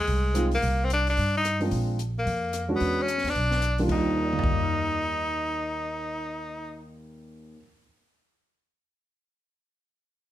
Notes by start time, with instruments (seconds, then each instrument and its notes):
0.00 tenor saxophone G#3
0.07 upright bass C2, kick, open hi-hat
0.34 grand piano G#3 C4 D#4 F4, cross-stick, closed hi-hat
0.51 tenor saxophone A#3, open hi-hat
0.62 upright bass C2, kick, open hi-hat
0.84 tenor saxophone C4
0.90 tenor saxophone D4, closed hi-hat
1.07 tenor saxophone D4, open hi-hat
1.17 upright bass G2, kick, open hi-hat
1.37 tenor saxophone D#4
1.45 cross-stick, closed hi-hat
1.60 grand piano G#3 C4 D4 F4, open hi-hat
1.71 upright bass A#1, kick, open hi-hat
1.99 closed hi-hat
2.19 tenor saxophone A#3
2.26 upright bass F2, kick, open hi-hat
2.53 cross-stick, closed hi-hat
2.68 grand piano G#3 C#4 D4 F#4
2.75 tenor saxophone B3
2.80 upright bass E2, kick, open hi-hat
3.02 tenor saxophone C#4
3.08 closed hi-hat
3.18 snare
3.24 upright bass D#2, snare, open hi-hat
3.29 tenor saxophone D4
3.35 upright bass B1, kick, open hi-hat
3.51 snare
3.62 cross-stick, closed hi-hat
3.78 grand piano D#2 G3 A#3 D4 F4, open hi-hat
3.85 grand piano D#2 D#3, upright bass D#2
3.89 grand piano G3, tenor saxophone D#4, kick, crash
3.94 grand piano D#4 F4
4.17 grand piano A#4
4.25 grand piano D5
4.33 grand piano F5, mid tom
4.39 grand piano A#5, floor tom
4.44 kick
4.52 grand piano D6
4.63 grand piano F6
4.74 grand piano A#6